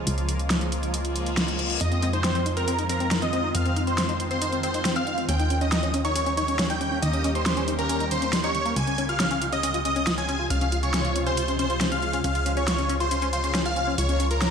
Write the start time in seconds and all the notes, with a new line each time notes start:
Already playing: C#3 F3 G#3 A#3 F4
0.07 C#2, closed hi-hat
0.18 closed hi-hat
0.29 closed hi-hat
0.39 closed hi-hat
0.50 snare, closed hi-hat
0.61 closed hi-hat
0.72 closed hi-hat
0.83 closed hi-hat
0.94 closed hi-hat, reverse cymbal
1.05 closed hi-hat
1.16 closed hi-hat
1.26 closed hi-hat
1.37 snare, closed hi-hat
1.48 closed hi-hat
1.59 closed hi-hat
1.70 closed hi-hat
1.81 F2 D#3 C4 D#4 F4 D#5, closed hi-hat
1.92 C4, closed hi-hat
2.02 C4, closed hi-hat
2.13 D#4 C5, closed hi-hat
2.24 C4, snare, closed hi-hat
2.35 C4, closed hi-hat
2.46 D#4, closed hi-hat
2.57 C4 A#4, closed hi-hat
2.68 C4, closed hi-hat
2.79 D#4, closed hi-hat
2.89 C4 A#4, closed hi-hat
3.00 C4, closed hi-hat
3.11 D#4, snare, closed hi-hat
3.22 C4 D#5, closed hi-hat
3.33 C4, closed hi-hat
3.44 D#4
3.55 F2 C4 F5, closed hi-hat
3.66 C4, closed hi-hat
3.76 D#4, closed hi-hat
3.87 C4 C5, closed hi-hat
3.98 C4, snare, closed hi-hat
4.09 D#4, closed hi-hat
4.20 C4, closed hi-hat
4.31 C4 C5, closed hi-hat
4.42 D#4, closed hi-hat
4.52 C4, closed hi-hat
4.63 C4 C5, closed hi-hat
4.74 D#4, closed hi-hat
4.85 C4, snare, closed hi-hat
4.96 C4 F5, closed hi-hat
5.07 D#4, closed hi-hat
5.18 C4, closed hi-hat
5.29 D#2 G3 A#3 C#4 G4 G5, closed hi-hat
5.39 D#4, closed hi-hat
5.50 C#4, closed hi-hat
5.61 C#4 D#5, closed hi-hat
5.72 D#4, snare, closed hi-hat
5.83 C#4, closed hi-hat
5.94 C#4, closed hi-hat
6.05 D#4 C#5, closed hi-hat
6.16 C#4, closed hi-hat
6.26 C#4, closed hi-hat
6.37 D#4 C#5, closed hi-hat
6.48 C#4, closed hi-hat
6.59 C#4, snare, closed hi-hat
6.70 D#4 G5, closed hi-hat
6.81 C#4, closed hi-hat
6.92 C#4
7.02 D#2 D#4 D#5, closed hi-hat
7.13 C#4, closed hi-hat
7.24 C#4, closed hi-hat
7.35 D#4 C5, closed hi-hat
7.46 C#4, snare, closed hi-hat
7.57 C#4, closed hi-hat
7.68 D#4, closed hi-hat
7.79 C#4 A#4, closed hi-hat
7.89 C#4, closed hi-hat
8.00 D#4, closed hi-hat
8.11 D#3 C5, closed hi-hat
8.22 C#4, closed hi-hat
8.33 G3, snare, closed hi-hat
8.44 D#4 C#5, closed hi-hat
8.55 D#3, closed hi-hat
8.66 A#3, closed hi-hat
8.76 C#2 C3 C#3 F3 G#3 F4 G#5, closed hi-hat
8.87 C#4, closed hi-hat
8.98 C#4, closed hi-hat
9.09 F4 F5, closed hi-hat
9.20 C#4, snare, closed hi-hat
9.31 C#4, closed hi-hat
9.42 F4, closed hi-hat
9.52 C#4 D#5, closed hi-hat
9.63 C#4, closed hi-hat
9.74 F4, closed hi-hat
9.85 C#4 D#5, closed hi-hat
9.96 C#4, closed hi-hat
10.07 F4, snare, closed hi-hat
10.18 C#4 G#5, closed hi-hat
10.29 C#4, closed hi-hat
10.39 F4
10.50 C#2 C#4 F5, closed hi-hat
10.61 C#4, closed hi-hat
10.72 F4, closed hi-hat
10.83 C#4 C#5, closed hi-hat
10.94 C#4, snare, closed hi-hat
11.05 F4, closed hi-hat
11.16 C#4, closed hi-hat
11.27 C#4 C5, closed hi-hat
11.37 F4, closed hi-hat
11.48 C#4, closed hi-hat
11.59 C#4 C5, closed hi-hat
11.70 F4, closed hi-hat
11.81 C#4, snare, closed hi-hat
11.92 C#4 F5, closed hi-hat
12.02 F4, closed hi-hat
12.13 C#4, closed hi-hat
12.24 C#2 A#3 C#4 F5, closed hi-hat
12.35 F4, closed hi-hat
12.46 C#4, closed hi-hat
12.57 C#4 C#5, closed hi-hat
12.68 F4, snare, closed hi-hat
12.79 C#4, closed hi-hat
12.89 C#4, closed hi-hat
13.00 F4 C5, closed hi-hat
13.11 C#4, closed hi-hat
13.22 C#4, closed hi-hat
13.33 F4 C5, closed hi-hat
13.44 C#4, closed hi-hat
13.55 C#4, snare, closed hi-hat
13.66 F4 F5, closed hi-hat
13.76 C#4, closed hi-hat
13.87 C#4
13.98 C#2 F4 C#5, closed hi-hat
14.09 C#4, closed hi-hat
14.20 C#4, closed hi-hat
14.31 F4 A#4, closed hi-hat
14.42 C#4, snare, closed hi-hat